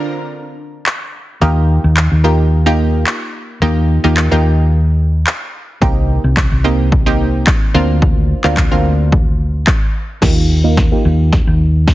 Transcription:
0.00 0.41 D3 medium
0.00 0.41 C4 medium
0.00 0.41 D4 medium
0.00 0.41 F4 medium
0.00 0.41 A#4 medium
0.86 clap loud
1.41 1.77 D#2 loud
1.41 1.80 A#3 medium
1.41 1.80 D#4 medium
1.41 1.80 F4 medium
1.41 1.80 G4 loud
1.84 2.07 D#2 medium
1.97 clap loud
2.12 3.03 D#2 medium
2.24 2.44 A#3 medium
2.24 2.44 D#4 medium
2.24 2.44 F4 medium
2.24 2.44 G4 medium
2.66 3.10 A#3 medium
2.66 3.10 D#4 medium
2.66 3.10 F4 medium
2.66 3.10 G4 loud
3.07 clap loud
3.62 3.97 D#2 loud
3.62 3.81 A#3 medium
3.62 3.81 D#4 medium
3.62 3.81 F4 medium
3.62 3.82 G4 loud
4.04 4.27 D#2 medium
4.04 4.16 A#3 medium
4.04 4.16 D#4 medium
4.04 4.16 F4 medium
4.04 4.16 G4 medium
4.17 clap loud
4.31 5.23 D#2 medium
4.31 4.81 A#3 medium
4.31 4.82 D#4 medium
4.31 4.82 F4 medium
4.31 4.82 G4 loud
5.27 clap loud
5.81 6.17 C2 loud
5.81 6.20 A#3 medium
5.81 6.20 C4 medium
5.81 6.20 D#4 medium
5.81 6.20 G4 loud
5.81 kick loud
6.24 6.47 C2 medium
6.37 kick loud
6.37 clap loud
6.52 7.43 C2 medium
6.64 6.84 A#3 medium
6.64 6.84 C4 medium
6.64 6.84 D#4 medium
6.64 6.84 G4 medium
6.92 kick loud
7.06 7.50 A#3 medium
7.06 7.50 C4 medium
7.06 7.50 D#4 medium
7.06 7.50 G4 loud
7.47 kick loud
7.47 clap loud
7.74 8.33 D2 medium
7.74 8.30 A#3 medium
7.74 8.30 C4 medium
7.74 8.30 D4 medium
7.74 8.30 F4 loud
8.02 kick loud
8.44 8.67 D2 medium
8.44 8.56 A#3 medium
8.44 8.56 C4 medium
8.44 8.56 D4 medium
8.44 8.56 F4 loud
8.44 clap medium
8.57 kick loud
8.57 clap loud
8.71 9.63 D2 medium
8.71 9.22 A#3 medium
8.71 9.22 C4 medium
8.71 9.22 D4 medium
8.71 9.22 F4 loud
9.12 kick loud
9.67 kick loud
9.67 clap loud
10.22 10.91 D#2 loud
10.22 10.41 A#3 medium
10.22 10.42 D#4 medium
10.22 10.42 F4 medium
10.22 10.42 G4 medium
10.22 kick loud
10.22 snare medium
10.22 crash medium
10.64 10.76 A#3 medium
10.64 10.76 D#4 medium
10.64 10.76 F4 medium
10.64 10.76 A#4 medium
10.77 kick loud
10.77 snare medium
10.92 11.42 A#3 medium
10.92 11.42 D#4 medium
10.92 11.42 F4 medium
10.92 11.42 G4 medium
11.05 11.40 D#2 medium
11.33 kick loud
11.33 snare medium
11.47 11.94 D#2 medium
11.88 kick loud
11.88 snare medium

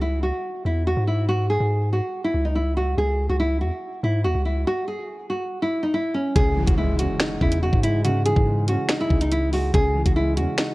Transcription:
0.00 0.32 C#2 medium
0.00 0.21 E4 medium
0.23 0.63 F#4 medium
0.65 0.96 E2 loud
0.65 0.85 E4 medium
0.87 1.06 F#4 medium
0.97 1.58 G#2 loud
1.07 1.27 E4 medium
1.29 1.48 F#4 medium
1.50 1.90 G#4 medium
1.60 2.01 G#2 loud
1.93 2.22 F#4 medium
2.24 2.44 E4 medium
2.34 2.95 C#2 loud
2.45 2.55 D#4 medium
2.56 2.75 E4 medium
2.77 2.96 F#4 medium
2.98 3.28 C#2 loud
2.98 3.28 G#4 loud
3.29 3.63 C#2 loud
3.29 3.39 F#4 medium
3.40 3.59 E4 medium
3.61 3.71 E2 loud
3.61 4.01 F#4 medium
4.03 4.26 G#2 loud
4.03 4.23 E4 medium
4.24 4.35 D#2 loud
4.24 4.44 F#4 medium
4.35 4.65 C#2 loud
4.45 4.65 E4 medium
4.67 4.86 F#4 loud
4.88 5.28 G#4 medium
5.30 5.60 F#4 medium
5.62 5.81 E4 medium
5.83 5.93 D#4 medium
5.94 6.13 E4 medium
6.14 6.34 C#4 medium
6.36 6.58 C#2 loud
6.36 7.40 C#3 loud
6.36 6.66 G#4 loud
6.36 kick loud
6.36 closed hi-hat medium
6.36 impact medium
6.57 6.67 B1 loud
6.57 7.63 E3 medium
6.67 7.08 C#2 loud
6.67 6.77 F#4 medium
6.67 kick medium
6.67 closed hi-hat medium
6.78 7.82 G#3 medium
6.78 6.97 E4 medium
6.99 8.05 C#4 medium
6.99 7.39 F#4 medium
6.99 closed hi-hat medium
7.20 8.26 D#4 medium
7.20 finger snap loud
7.20 snare loud
7.20 closed hi-hat medium
7.41 7.72 E2 loud
7.41 8.04 C#3 medium
7.41 7.61 E4 medium
7.41 kick loud
7.52 closed hi-hat medium
7.63 7.82 F#4 medium
7.73 8.34 G#2 loud
7.73 kick loud
7.83 8.46 G#3 medium
7.83 8.03 E4 medium
7.83 closed hi-hat medium
8.05 9.09 C#3 loud
8.05 8.24 F#4 loud
8.05 closed hi-hat medium
8.25 9.31 E3 medium
8.25 8.66 G#4 medium
8.25 closed hi-hat medium
8.36 8.77 G#2 loud
8.36 kick medium
8.47 9.50 G#3 medium
8.68 9.74 C#4 medium
8.68 8.98 F#4 medium
8.68 closed hi-hat medium
8.89 9.74 D#4 loud
8.89 finger snap loud
8.89 snare loud
8.89 closed hi-hat medium
9.01 9.20 E4 medium
9.10 9.71 C#2 loud
9.10 9.72 C#3 medium
9.10 kick medium
9.21 9.31 D#4 medium
9.21 closed hi-hat medium
9.31 9.51 E4 medium
9.31 closed hi-hat medium
9.52 9.73 G#3 medium
9.52 9.72 F#4 medium
9.52 open hi-hat medium
9.74 10.04 C#2 loud
9.74 10.74 C#3 loud
9.74 10.04 G#4 loud
9.74 kick loud
9.74 closed hi-hat medium
9.95 10.74 E3 medium
10.06 10.39 C#2 loud
10.06 10.15 F#4 medium
10.06 kick medium
10.06 closed hi-hat medium
10.16 10.74 G#3 medium
10.16 10.35 E4 medium
10.37 10.47 E2 loud
10.37 10.74 C#4 medium
10.37 10.74 F#4 medium
10.37 closed hi-hat medium
10.58 10.74 D#4 loud
10.58 finger snap loud
10.58 snare loud
10.58 closed hi-hat medium

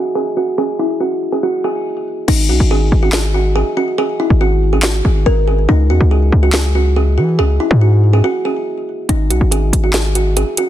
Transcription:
0.00 0.11 F#4 medium
0.15 0.33 G#4 medium
0.37 0.54 F#4 medium
0.58 0.75 G#4 loud
0.79 0.96 E4 medium
1.00 1.30 F#4 medium
1.32 1.41 G#4 medium
1.43 1.60 F#4 medium
1.64 2.24 G#4 medium
2.28 2.51 G#1 loud
2.28 2.45 D#4 loud
2.28 crash loud
2.49 2.60 B1 loud
2.49 2.67 F#4 medium
2.60 2.91 G#1 loud
2.71 3.01 G#4 medium
2.92 3.63 G#1 loud
3.03 3.11 F#4 medium
3.12 3.30 G#4 medium
3.12 snare loud
3.12 clap medium
3.34 3.52 F#4 medium
3.56 3.73 G#4 medium
3.77 3.94 F#4 medium
3.98 4.15 G#4 loud
4.20 4.37 E4 medium
4.30 5.02 G#1 loud
4.41 4.71 F#4 medium
4.73 4.81 G#4 medium
4.83 5.01 F#4 medium
4.83 snare loud
4.83 clap medium
5.05 5.25 G#1 loud
5.05 5.22 G#4 medium
5.26 5.67 G#1 loud
5.26 5.43 A#4 medium
5.48 5.65 G#4 medium
5.69 5.91 C#2 loud
5.69 5.86 D#4 loud
5.90 6.00 E2 loud
5.90 6.07 F#4 medium
6.00 6.31 C#2 loud
6.11 6.41 G#4 medium
6.32 7.19 C#2 loud
6.43 6.52 F#4 medium
6.53 6.71 G#4 medium
6.53 snare loud
6.53 clap medium
6.75 6.92 F#4 medium
6.96 7.13 G#4 medium
7.18 7.40 E3 loud
7.18 7.35 F#4 medium
7.39 7.59 C#2 loud
7.39 7.56 G#4 loud
7.60 7.77 E4 medium
7.71 8.22 G#2 loud
7.81 8.11 F#4 medium
8.13 8.22 G#4 medium
8.24 8.41 F#4 medium
8.45 9.05 G#4 medium
9.09 9.32 G#1 loud
9.09 9.26 D#4 loud
9.09 closed hi-hat medium
9.30 9.40 B1 loud
9.30 9.47 F#4 medium
9.30 closed hi-hat medium
9.41 9.72 G#1 loud
9.51 9.81 G#4 medium
9.51 closed hi-hat medium
9.73 10.44 G#1 loud
9.73 closed hi-hat medium
9.84 9.92 F#4 medium
9.93 10.11 G#4 medium
9.93 snare loud
9.93 clap medium
9.93 closed hi-hat medium
10.15 10.33 F#4 medium
10.15 closed hi-hat medium
10.37 10.54 G#4 medium
10.37 closed hi-hat medium
10.57 10.69 F#4 medium
10.57 closed hi-hat medium

